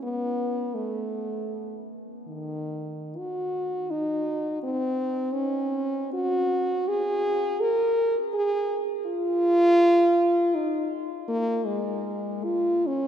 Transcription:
0.03 0.76 B3 medium
0.75 1.85 A3 medium
2.28 3.19 D#3 medium
3.18 3.92 F#4 medium
3.90 4.63 D#4 medium
4.63 5.35 C4 medium
5.33 6.13 C#4 medium
6.13 6.90 F#4 loud
6.88 7.62 G#4 loud
7.61 8.17 A#4 loud
8.34 8.80 G#4 loud
9.06 10.56 F4 loud
10.55 10.91 D#4 medium
11.29 11.68 A#3 loud
11.66 12.46 G#3 medium
12.45 12.88 F4 medium
12.87 13.07 C#4 medium

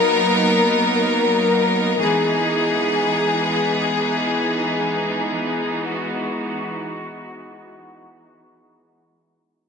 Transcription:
0.00 1.95 F#3 medium
0.00 1.95 A#3 medium
0.00 1.96 B3 medium
0.00 1.95 D#4 medium
0.00 1.95 A#4 medium
1.99 9.69 E3 medium
1.99 9.69 G#3 medium
1.99 9.69 B3 medium
1.99 9.69 D#4 medium
1.99 5.83 G#4 medium
5.87 9.69 F#4 medium

